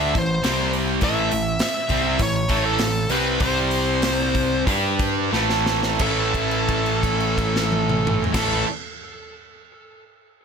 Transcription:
Already playing: picked electric bass D2, distorted electric guitar D3 A3 D4, lead electric guitar E5
0.15 picked electric bass A1, distorted electric guitar A2 E3, lead electric guitar C5, kick, open hi-hat
0.43 picked electric bass C2, distorted electric guitar C3 G3 C4, snare, open hi-hat
0.73 open hi-hat
1.01 picked electric bass A1, distorted electric guitar A2 E3 A3, lead electric guitar E5, kick, open hi-hat
1.31 picked electric bass A1, distorted electric guitar A2 E3, open hi-hat
1.59 lead electric guitar E5, snare, open hi-hat
1.89 picked electric bass C2, distorted electric guitar C3 G3 C4, kick, open hi-hat
2.19 picked electric bass A1, distorted electric guitar A2 E3, lead electric guitar C#5, kick, open hi-hat
2.49 picked electric bass A1, distorted electric guitar A2 E3 A3, kick, open hi-hat
2.65 lead electric guitar A4
2.79 picked electric bass A1, distorted electric guitar A2 E3, snare, open hi-hat
3.09 picked electric bass C2, distorted electric guitar C3 G3 C4, lead electric guitar B4, open hi-hat
3.40 picked electric bass C2, distorted electric guitar C3 G3 C4, lead electric guitar C5, kick, open hi-hat
3.71 open hi-hat
4.02 snare, open hi-hat
4.35 kick, open hi-hat
4.67 picked electric bass G2, distorted electric guitar G3 D4 G4, kick, open hi-hat
4.99 kick, open hi-hat
5.32 picked electric bass A1, distorted electric guitar A2 E3 A3, snare
5.50 snare
5.66 snare
5.83 snare
5.99 picked electric bass A1, distorted electric guitar A2 E3 A3 C#4, lead electric guitar A4, kick, crash
6.03 distorted electric guitar E4
6.34 kick, crash
6.51 crash
6.68 kick, crash
6.86 crash
7.03 kick, crash
7.20 crash
7.38 kick, crash
7.56 snare
7.72 high tom
7.89 mid tom
8.07 mid tom
8.24 floor tom
8.33 picked electric bass A1, distorted electric guitar A2 E3 A3 C#4, lead electric guitar A4, kick, snare, crash
8.37 distorted electric guitar E4

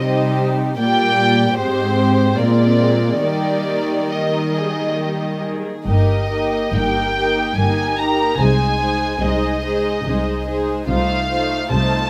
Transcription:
Already playing: cello section C3, violin section D#5
0.05 viola section G3 D#4, violin section G4 C5
0.79 cello section A#2, viola section G3 A#3, violin section G4 D5 G5
1.56 cello section G#2, viola section G#3 C4, violin section G4 C5
2.36 cello section A#2, viola section G#3 C4, violin section F4 A#4 D5
3.22 cello section D#3, viola section G3 A#3, violin section G4 A#4 D5
4.10 viola section G3 A#3, violin section A#4 D#5
4.55 violin section G#4
4.99 violin section G4
5.43 violin section G#4
5.86 double bass section G1, cello section G2, viola section A#3 D#4, violin section G4 A#4 D#5
6.31 viola section A#3 D#4, violin section G4 A#4
6.73 double bass section G1, cello section G2, viola section A#3 D#4, violin section G4 A#4 G5
7.16 viola section A#3 D#4, violin section G4 A#4
7.57 double bass section G1, cello section G2, viola section A#3 D#4, violin section G4 A#4 G#5
7.98 viola section A#3 D#4, violin section G4 A#4 A#5
8.39 double bass section C2, cello section C3, viola section G#3 D#4, violin section G#4 C5 G#5
8.79 viola section G#3 D#4, violin section G#4 C5
9.21 double bass section C2, cello section C3, viola section G#3 D#4, violin section G#4 C5 D#5
9.64 viola section G#3 D#4, violin section G#4 C5
10.05 double bass section C2, cello section C3, viola section G#3 D#4, violin section G#4 C5
10.46 viola section G#3 D#4, violin section G#4 C5
10.88 double bass section C2, cello section C3, viola section A3 D#4, violin section F4 C5 F5
11.29 viola section A3 D#4, violin section F4 C5
11.70 double bass section C2, cello section C3, viola section A3 D#4, violin section F4 C5 A5

